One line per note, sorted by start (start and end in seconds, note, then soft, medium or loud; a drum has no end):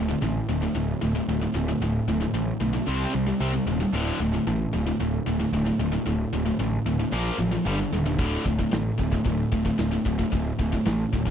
0.00 0.13 D1 medium
0.09 0.21 D2 medium
0.09 0.21 A2 medium
0.22 0.39 A1 medium
0.22 0.46 D2 medium
0.22 0.46 A2 medium
0.49 0.66 D1 medium
0.49 0.61 D2 medium
0.49 0.61 A2 medium
0.62 0.73 D2 medium
0.62 0.74 A2 medium
0.75 0.92 D1 medium
0.75 0.99 D2 medium
0.75 0.99 A2 medium
1.01 1.19 D1 medium
1.01 1.14 D2 medium
1.01 1.14 A2 medium
1.15 1.27 D2 medium
1.15 1.28 A2 medium
1.28 1.45 D1 medium
1.28 1.41 D2 medium
1.28 1.40 A2 medium
1.42 1.54 D2 medium
1.42 1.53 A2 medium
1.54 1.72 D1 medium
1.54 1.67 D2 medium
1.54 1.67 A2 medium
1.68 1.81 D2 medium
1.68 1.81 A2 medium
1.82 1.99 D1 medium
1.82 2.05 D2 medium
1.82 2.06 A2 medium
2.08 2.25 D1 medium
2.08 2.20 D2 medium
2.08 2.19 A2 medium
2.21 2.33 D2 medium
2.21 2.33 A2 medium
2.34 2.51 A1 medium
2.34 2.58 D2 medium
2.34 2.58 A2 medium
2.60 2.78 B1 medium
2.60 2.73 D2 medium
2.60 2.72 A2 medium
2.73 2.86 D2 medium
2.73 2.87 A2 medium
2.87 3.05 C2 medium
2.87 3.12 C3 medium
2.87 3.12 G3 medium
2.87 3.13 C4 medium
3.13 3.32 C2 medium
3.13 3.26 C3 medium
3.13 3.26 G3 medium
3.27 3.39 C3 medium
3.27 3.40 G3 medium
3.40 3.58 C2 medium
3.40 3.52 C3 medium
3.40 3.52 G3 medium
3.40 3.53 C4 loud
3.53 3.66 C3 medium
3.53 3.66 G3 medium
3.66 3.84 D#1 medium
3.66 3.79 C3 medium
3.66 3.79 G3 medium
3.80 3.93 C3 medium
3.80 3.94 G3 medium
3.93 4.10 D1 medium
3.93 4.19 D2 loud
3.93 4.19 A2 medium
3.93 4.19 D3 loud
4.20 4.37 D1 medium
4.20 4.33 D2 medium
4.20 4.33 A2 medium
4.34 4.46 D2 medium
4.34 4.46 A2 medium
4.47 4.64 A1 medium
4.47 4.71 D2 medium
4.47 4.71 A2 medium
4.73 4.91 D1 loud
4.73 4.86 D2 medium
4.73 4.85 A2 medium
4.86 4.99 D2 medium
4.86 4.99 A2 medium
5.00 5.18 D1 medium
5.00 5.24 D2 medium
5.00 5.24 A2 medium
5.26 5.44 D1 medium
5.26 5.39 D2 medium
5.26 5.39 A2 medium
5.40 5.52 D2 medium
5.40 5.53 A2 medium
5.52 5.70 D1 medium
5.52 5.66 D2 medium
5.52 5.65 A2 medium
5.66 5.79 D2 medium
5.66 5.78 A2 medium
5.80 5.97 D1 medium
5.80 5.91 D2 medium
5.80 5.91 A2 medium
5.92 6.05 D2 medium
5.92 6.06 A2 medium
6.06 6.24 D1 medium
6.06 6.30 D2 medium
6.06 6.31 A2 medium
6.33 6.50 D1 medium
6.33 6.45 D2 medium
6.33 6.44 A2 medium
6.46 6.58 D2 medium
6.46 6.58 A2 medium
6.59 6.77 A1 medium
6.59 6.83 D2 medium
6.59 6.84 A2 medium
6.86 7.03 D1 medium
6.86 6.99 D2 medium
6.86 6.98 A2 medium
7.00 7.12 D2 medium
7.00 7.13 A2 medium
7.12 7.30 A#1 medium
7.12 7.38 A#2 medium
7.12 7.37 F3 medium
7.12 7.38 A#3 medium
7.39 7.56 A1 medium
7.39 7.51 A#2 medium
7.39 7.50 F3 medium
7.52 7.65 A#2 medium
7.52 7.66 F3 medium
7.66 7.83 G1 medium
7.66 7.78 G2 medium
7.66 7.78 D3 medium
7.66 7.78 G3 loud
7.79 7.92 G2 medium
7.79 7.92 D3 medium
7.93 8.19 D#1 medium
7.93 8.05 G2 medium
7.93 8.05 D3 medium
8.06 8.18 G2 medium
8.06 8.19 D3 medium
8.19 8.36 D1 medium
8.19 8.44 D2 loud
8.19 8.44 A2 loud
8.19 8.45 D3 loud
8.19 kick loud
8.19 open hi-hat soft
8.45 8.63 D1 medium
8.45 8.58 D2 medium
8.45 8.58 A2 medium
8.45 kick medium
8.59 8.70 D2 medium
8.59 8.71 A2 medium
8.59 kick medium
8.71 8.90 A1 medium
8.71 8.96 D2 medium
8.71 8.96 A2 medium
8.71 snare loud
8.71 open hi-hat soft
8.98 9.17 D1 medium
8.98 9.11 D2 medium
8.98 9.11 A2 medium
8.98 kick medium
9.12 9.23 D2 medium
9.12 9.24 A2 medium
9.12 kick medium
9.24 9.43 D1 medium
9.24 9.49 D2 medium
9.24 9.50 A2 medium
9.24 kick loud
9.24 open hi-hat medium
9.52 9.70 D1 medium
9.52 9.64 D2 medium
9.52 9.64 A2 medium
9.52 kick medium
9.65 9.77 D2 medium
9.65 9.77 A2 medium
9.65 kick medium
9.78 9.96 D1 medium
9.78 9.91 D2 medium
9.78 9.90 A2 medium
9.78 snare loud
9.78 open hi-hat medium
9.92 10.04 D2 medium
9.92 10.04 A2 medium
10.05 10.23 D1 medium
10.05 10.17 D2 medium
10.05 10.17 A2 medium
10.05 kick medium
10.19 10.30 D2 medium
10.19 10.31 A2 medium
10.19 kick medium
10.32 10.50 D1 medium
10.32 10.56 D2 medium
10.32 10.57 A2 medium
10.32 kick loud
10.32 open hi-hat medium
10.59 10.77 D1 medium
10.59 10.71 D2 medium
10.59 10.71 A2 medium
10.59 kick medium
10.72 10.84 D2 medium
10.72 10.85 A2 medium
10.72 kick medium
10.85 11.04 A1 loud
10.85 11.10 D2 medium
10.85 11.10 A2 medium
10.85 snare loud
10.85 open hi-hat medium
11.13 11.30 D1 medium
11.13 11.25 D2 medium
11.13 11.24 A2 medium
11.13 kick medium
11.26 11.30 D2 medium
11.26 11.30 A2 medium
11.26 kick medium